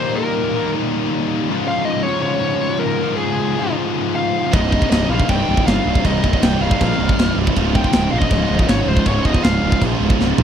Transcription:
Already playing: D#2 C5
0.00 A#2 D#3 G3 A#3 D#4
0.05 D#2 A#2
0.14 D#2 A#2 A#4
0.20 D#2 A#2
0.28 D#2 A#2
0.36 D#2 A#2
0.43 D#2 A#2
0.51 D#2 A#2
0.56 D#2 A#2 D#3 G3 A#3 D#4
0.66 D#2 A#2
0.75 D#2 A#2
0.82 D#2 A#2
0.90 D#2 A#2
0.97 D#2 A#2
1.04 D#2 A#2
1.11 D#2 A#2
1.19 D#2 A#2
1.28 D#2 A#2
1.35 D#2 A#2
1.42 D#2 A#2
1.49 C#2 G#2 C#3 F3 F4
1.58 C#2 G#2
1.67 C#2 G#2 F5
1.75 C#2 G#2
1.82 C#2 G#2 D#5
1.88 C#2 G#2
1.96 C#2 G#2
2.03 C#2 G#2 C#5
2.07 C#2 G#2 C#3 F3 F4
2.14 C#2
2.20 C#2 G#2 C#5
2.27 C#2 G#2
2.34 C#2 G#2
2.41 G#2
2.45 C#2 G#2
2.53 C#2 G#2
2.61 C#2 G#2
2.69 C#2 G#2
2.77 C#2 G#2 A#4
2.84 C#2 G#2
2.93 C#2 G#2
3.01 C#2 G#2 C#3 F3 F4
3.09 C#2 G#2
3.16 C#2 G#2 G#4
3.24 C#2 G#2
3.31 C#2 G#2
3.39 C#2 G#2
3.47 C#2 G#2
3.55 C#2 G#2 F4
3.60 C#2 G#2 C#3 F3
3.70 C#2 G#2
3.77 C#2 G#2
3.85 C#2 G#2
3.93 C#2 G#2
3.99 C#2 G#2
4.07 C#2 G#2
4.15 C#2 G#2 F5
4.23 C#2 G#2
4.31 C#2 G#2
4.38 C#2 G#2
4.45 C#2 G#2
4.53 C1 C2 G2 C3 G3 D#4 D#5, kick, crash
4.61 C2 G2
4.69 C2 G2, kick
4.76 C2 G2
4.82 C2 G2, kick
4.90 C1 C2 G2 D#5, snare, crash
4.99 C2 G2
5.06 A#1 C2 G2 F5
5.11 C2 G2 C3 G3 D#4
5.20 C2 G2, kick
5.29 C1 C2 G2 G5, kick, crash
5.37 C2 G2
5.44 C2 G2
5.49 C1 C2
5.53 G2
5.57 C2 G2, kick
5.66 G1 C2 G2 F5, snare, crash
5.74 C2 G2
5.81 C2 G2
5.85 C1 C2 G2
5.95 C2 G2, kick
6.05 C1 C2 G2 C3 G3 D#4 D#5, kick, crash
6.13 C2 G2
6.20 C1 C2 G2, kick
6.28 C2 G2
6.33 C2 G2, kick
6.42 C1 C2 G2 G5, snare, crash
6.51 C2 G2
6.57 C1 C2 G2
6.61 C2 G2 C3 G3 D#4 F5
6.66 C2 G2
6.71 C2 G2, kick
6.81 A#1 C2 G2, kick, crash
6.88 C2 G2
6.95 C1 C2 G2
7.03 C2 G2
7.09 C2 G2, kick
7.17 C1 C2 G2, snare, crash
7.26 C2 G2
7.33 C1 C2 G2
7.41 C2 G2
7.47 C2 G2, kick
7.56 C#1 C#2 G#2 C#3 F3 F4, kick, crash
7.64 C#2 G#2
7.72 C#2 G#2 G5, kick
7.79 C#2 G#2
7.84 C#2, kick
7.89 G#2, crash
7.93 C#1 C#2 G#2, snare
8.03 C#2 G#2
8.11 A#1 C#2 G#2 C#3 F3 F4 F5
8.15 C#2 D#5
8.19 C#2 G#2, kick
8.26 C#2 G#2, crash
8.31 C#1, kick
8.35 C#2 G#2
8.42 C#2 G#2
8.50 C#1 C#2 G#2
8.57 C#2 G#2, kick
8.65 G#1 C#2 G#2 C#5, snare, crash
8.73 C#2 G#2
8.82 C#2 G#2
8.86 C#1 C#2 C5
8.91 G#2
8.95 C#2 G#2, kick
9.05 C#1 C#2 G#2 C#3 F3 F4 C#5, kick, crash
9.13 C#2 G#2
9.21 C#2 G#2 D#5, kick
9.26 C#1 C#2 G#2
9.34 C#2 G#2, kick
9.43 C#1 C#2 G#2 F5, snare, crash
9.51 C#2 G#2
9.58 C#2 G#2
9.62 C#1 C#2 G#2 C#3 F3 F4
9.66 C#2 G#2
9.72 C#2 G#2, kick
9.81 A#1 C#2 G#2, kick, crash
9.88 C#2 G#2
9.96 C#2 G#2
10.00 C#1 G#2
10.06 C#2, kick
10.12 C#2 G#2
10.19 C#1 C#2 G#2, snare
10.27 C#2 G#2
10.34 C#2 G#2
10.38 B1, floor tom

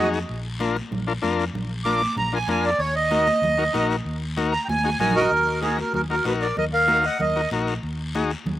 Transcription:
Already playing: F2 D#4 F#4 G#4
0.13 short guiro
0.29 A#1, long guiro
0.60 D4 F4 A#4, high conga, short guiro
0.76 high conga, short guiro
0.91 A#1, low conga, long guiro
1.07 D4 F4 A#4
1.22 F2 D4 F4 A#4, high conga, short guiro
1.40 short guiro
1.54 A#1, low conga, long guiro
1.84 D4 F4 A#4 D6, high conga, short guiro
2.01 high conga, short guiro
2.16 A#1 A#5, low conga, long guiro
2.33 D4 F4 A#4 G#5
2.47 F2 D4 F4 A#4 G#5, high conga, short guiro
2.64 D5, short guiro
2.79 D#2 C#5, long guiro
2.96 D#5
3.11 D#4 F#4 A#4, high conga, short guiro
3.27 high conga, short guiro
3.42 D#2, low conga, long guiro
3.58 D#4 F#4 A#4
3.73 A#1 D#4 F#4 A#4, high conga, short guiro
3.90 short guiro
4.05 D#2, long guiro
4.37 D#4 F#4 A#4, high conga, short guiro
4.52 A#5, short guiro
4.65 D#2 G5
4.69 G#5, high conga, long guiro
4.80 high conga
4.84 D#4 F#4 G#4
4.90 high conga
4.99 A#1 D#4 F#4 A#4 G#5, low conga, short guiro
5.11 F#4, low conga
5.16 F#4 A#4 D#5, short guiro
5.21 low conga
5.30 D#2, long guiro
5.62 D#4 F#4 G#4 A#4, high conga, short guiro
5.78 F#4 A#4, high conga, short guiro
5.93 D#2 F#4 A#4, low conga, long guiro
6.10 D#4 F#4 A#4
6.25 A#1 D#4 F#4 A#4 B4, high conga, short guiro
6.41 A#4 D5, short guiro
6.57 D#2 A#4 D#5, low conga, long guiro
6.73 A#4 F5
6.87 D#4 F#4 A#4, high conga, short guiro
7.04 D#5 F#5, short guiro
7.19 D#2 A#4 D#5, low conga, long guiro
7.36 D#4 F#4 A#4
7.51 A#1 D#4 F#4 A#4, high conga, short guiro
7.67 short guiro
7.83 D#2, long guiro
8.15 D#4 F#4 G#4, high conga, short guiro
8.30 short guiro
8.46 D#2, low conga, long guiro

